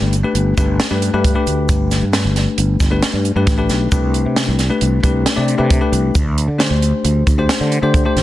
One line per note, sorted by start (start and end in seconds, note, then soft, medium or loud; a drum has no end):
0.00 0.22 G1 medium
0.00 0.14 A3 medium
0.00 0.14 D4 medium
0.00 0.14 G4 medium
0.00 0.15 B4 loud
0.13 closed hi-hat medium
0.13 shaker soft
0.24 0.53 A3 medium
0.24 0.53 D4 medium
0.24 0.53 G4 medium
0.24 0.53 B4 medium
0.35 0.56 G1 medium
0.35 closed hi-hat medium
0.57 0.78 G1 medium
0.57 0.87 A3 medium
0.57 0.87 D4 medium
0.57 0.87 G4 medium
0.57 0.87 B4 medium
0.57 kick medium
0.57 closed hi-hat medium
0.57 shaker soft
0.80 snare loud
0.80 closed hi-hat medium
0.91 1.11 G2 medium
0.91 1.10 A3 medium
0.91 1.10 D4 medium
0.91 1.10 G4 medium
0.91 1.10 B4 medium
1.02 closed hi-hat medium
1.13 1.34 G2 medium
1.13 1.33 A3 medium
1.13 1.33 D4 medium
1.13 1.33 G4 medium
1.13 1.33 B4 loud
1.24 kick loud
1.24 closed hi-hat medium
1.35 2.04 A3 medium
1.35 2.04 D4 medium
1.35 2.04 G4 medium
1.35 2.04 B4 medium
1.47 1.67 D2 medium
1.47 closed hi-hat medium
1.47 shaker soft
1.69 2.00 G1 medium
1.69 kick loud
1.69 closed hi-hat medium
1.69 shaker medium
1.91 snare soft
1.91 closed hi-hat medium
1.91 shaker soft
2.02 2.23 G2 medium
2.13 2.82 A3 medium
2.13 2.82 D4 medium
2.13 2.82 G4 soft
2.13 2.82 B4 medium
2.13 snare loud
2.13 closed hi-hat medium
2.13 shaker soft
2.25 2.45 G1 medium
2.36 snare soft
2.36 closed hi-hat medium
2.58 2.79 G1 medium
2.58 closed hi-hat medium
2.80 3.01 G1 medium
2.80 kick medium
2.80 snare soft
2.80 closed hi-hat medium
2.80 shaker soft
2.91 3.30 A3 medium
2.91 3.30 D4 medium
2.91 3.30 G4 medium
2.91 3.31 B4 medium
3.03 snare loud
3.03 closed hi-hat medium
3.13 3.34 G2 medium
3.25 closed hi-hat soft
3.36 3.46 G2 medium
3.36 3.55 A3 medium
3.36 3.55 D4 medium
3.36 3.56 G4 medium
3.36 3.56 B4 medium
3.47 3.67 A1 medium
3.47 kick loud
3.47 snare soft
3.47 closed hi-hat medium
3.58 3.87 A3 medium
3.58 3.87 D4 medium
3.58 3.88 G4 medium
3.58 3.88 B4 medium
3.69 3.89 B1 medium
3.69 snare soft
3.69 closed hi-hat medium
3.69 shaker soft
3.92 4.23 C2 medium
3.92 4.60 A3 medium
3.92 4.60 D4 medium
3.92 4.60 G4 medium
3.92 4.61 B4 loud
3.92 kick loud
3.92 closed hi-hat medium
3.92 shaker medium
4.14 closed hi-hat medium
4.26 4.46 C3 medium
4.36 snare medium
4.36 closed hi-hat medium
4.48 4.69 C2 medium
4.59 snare soft
4.59 closed hi-hat medium
4.59 shaker soft
4.70 4.99 A3 medium
4.70 4.99 D4 medium
4.70 4.99 G4 medium
4.70 4.99 B4 medium
4.81 5.02 C2 medium
4.81 closed hi-hat medium
5.03 5.24 C2 medium
5.03 5.33 A3 medium
5.03 5.33 D4 medium
5.03 5.33 G4 medium
5.03 5.33 B4 medium
5.03 kick medium
5.03 closed hi-hat medium
5.26 snare medium
5.26 closed hi-hat medium
5.36 5.58 C3 medium
5.36 5.56 A3 medium
5.36 5.56 D4 medium
5.36 5.56 G4 medium
5.36 5.56 D5 medium
5.48 closed hi-hat soft
5.58 5.80 C3 medium
5.58 5.78 A3 medium
5.58 5.78 D4 medium
5.58 5.78 G4 medium
5.58 5.78 B4 medium
5.70 kick loud
5.70 closed hi-hat medium
5.81 6.15 A3 medium
5.81 6.15 D4 medium
5.81 6.15 G4 medium
5.81 6.15 B4 medium
5.92 6.13 C2 medium
5.92 closed hi-hat medium
5.92 shaker soft
6.15 6.46 D2 medium
6.15 kick loud
6.15 closed hi-hat medium
6.15 shaker medium
6.38 closed hi-hat medium
6.48 6.69 D3 medium
6.58 7.28 A3 medium
6.58 7.28 D4 medium
6.58 7.28 G4 medium
6.58 7.28 C5 medium
6.58 snare loud
6.58 closed hi-hat medium
6.70 6.92 D2 medium
6.82 closed hi-hat medium
6.82 shaker soft
7.05 7.25 D2 medium
7.05 closed hi-hat medium
7.27 7.48 D2 medium
7.27 kick medium
7.27 closed hi-hat medium
7.27 shaker soft
7.38 7.77 A3 medium
7.38 7.77 D4 medium
7.38 7.78 G4 medium
7.38 7.78 C5 medium
7.49 snare loud
7.49 closed hi-hat medium
7.60 7.81 D3 medium
7.72 closed hi-hat soft
7.82 8.04 D3 medium
7.82 8.02 A3 medium
7.82 8.02 D4 medium
7.82 8.02 G4 medium
7.82 8.03 C5 medium
7.94 kick loud
7.94 closed hi-hat medium
8.05 8.23 A3 medium
8.05 8.23 D4 medium
8.05 8.23 G4 medium
8.05 8.23 C5 medium
8.16 8.23 A1 medium
8.16 snare soft
8.16 closed hi-hat soft
8.16 shaker soft